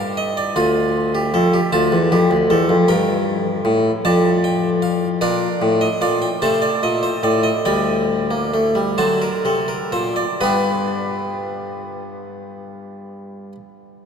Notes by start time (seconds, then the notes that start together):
Already playing: G2 G4 A#4 F5
0.17 D#5
0.37 D5
0.56 D2 F4 F5
1.15 G4
1.34 F2 A4
1.54 G4
1.73 D2 F4 A5
1.92 E2
2.12 F2 G4
2.31 D2
2.50 E2 A4
2.69 F2
2.88 G2 A#4 G5
3.65 A2
4.05 F2 D5 A5
4.44 G5
4.82 F5
5.21 A#2 D4 A#4 D5
5.62 A2
5.81 D#5
6.01 A#2 D5 F5
6.22 G5
6.42 C3 A3 C5 A5
6.62 D5
6.83 A#2 D#5
7.03 C5
7.23 A2 D5
7.43 D#5
7.65 D2 G3 D5 G5
8.31 A#3
8.54 A3
8.75 G3
8.98 D3 F#3 C5 A5
9.22 A#4
9.45 C3 A4
9.68 A#4
9.92 A#2 C5
10.16 D5
10.41 G2 G3 B3 D4 B4 B5